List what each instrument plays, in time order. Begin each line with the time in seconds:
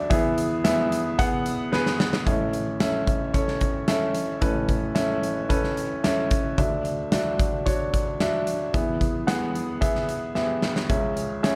Already playing: upright piano D4 F#4 E5
0.10 upright piano E2 E3 B3 G#4 E5, kick, closed hi-hat
0.38 closed hi-hat
0.64 upright piano B3 G#4 E5, snare, closed hi-hat
0.92 closed hi-hat
1.19 upright piano B3 G#4 F#5, kick, closed hi-hat
1.46 closed hi-hat
1.72 upright piano B3 G#4 B4, snare
1.86 snare
2.00 snare
2.13 snare
2.26 upright piano A1 A2 C#4 A4 E5, kick, closed hi-hat
2.53 closed hi-hat
2.80 upright piano C#4 A4 E5, snare, closed hi-hat
3.07 kick, closed hi-hat
3.33 upright piano C#4 A4 C#5, kick, closed hi-hat
3.48 snare
3.61 kick, closed hi-hat
3.88 upright piano C#4 A4 E5, snare, closed hi-hat
4.15 closed hi-hat
4.41 upright piano A1 A2 C#4 A4 B4, kick, closed hi-hat
4.69 kick, closed hi-hat
4.95 upright piano C#4 A4 E5, snare, closed hi-hat
5.23 closed hi-hat
5.49 upright piano C#4 A4 B4, kick, closed hi-hat
5.64 snare
5.77 closed hi-hat
6.04 upright piano C#4 A4 E5, snare, closed hi-hat
6.31 kick, closed hi-hat
6.58 upright piano D2 D3 D4 F#4 E5, kick, closed hi-hat
6.85 closed hi-hat
7.12 upright piano D4 F#4 E5, snare, closed hi-hat
7.39 kick, closed hi-hat
7.66 upright piano D4 F#4 C#5, kick, closed hi-hat
7.94 kick, closed hi-hat
8.20 upright piano D4 F#4 E5, snare, closed hi-hat
8.47 closed hi-hat
8.74 upright piano E2 E3 B3 G#4 E5, kick, closed hi-hat
9.01 kick, closed hi-hat
9.27 upright piano B3 G#4 F#5, snare, closed hi-hat
9.55 closed hi-hat
9.81 upright piano B3 G#4 E5, kick, closed hi-hat
9.95 snare
10.09 closed hi-hat
10.35 upright piano B3 G4 E5, snare
10.42 upright piano G#4
10.62 snare
10.76 snare
10.89 upright piano C#2 C#3 C#4 G#4 E5, kick, closed hi-hat
11.17 closed hi-hat
11.43 upright piano C#4 G#4 E5, snare, closed hi-hat